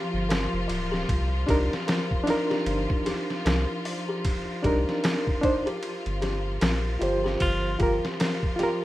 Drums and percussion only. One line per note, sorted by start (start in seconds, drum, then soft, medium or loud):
0.30 snare loud
0.30 ride medium
0.69 ride medium
0.94 snare soft
1.09 kick loud
1.09 ride medium
1.48 kick loud
1.48 ride medium
1.73 snare medium
1.88 snare loud
1.88 ride medium
2.11 kick medium
2.27 snare soft
2.27 ride medium
2.51 snare soft
2.66 ride medium
2.90 kick loud
3.06 snare soft
3.06 ride medium
3.30 snare soft
3.46 snare loud
3.46 ride medium
3.85 open hi-hat medium
4.25 kick loud
4.25 ride medium
4.64 kick medium
4.64 ride medium
4.89 snare soft
5.04 snare loud
5.04 ride medium
5.27 kick medium
5.43 kick medium
5.43 ride medium
5.67 ride soft
5.83 ride medium
6.06 ride soft
6.22 snare soft
6.22 ride medium
6.61 snare loud
6.61 ride medium
7.02 ride medium
7.26 snare soft
7.40 kick loud
7.40 ride medium
7.80 kick medium
7.80 ride medium
8.05 snare medium
8.20 snare loud
8.20 ride medium
8.43 kick medium
8.59 snare soft
8.59 ride medium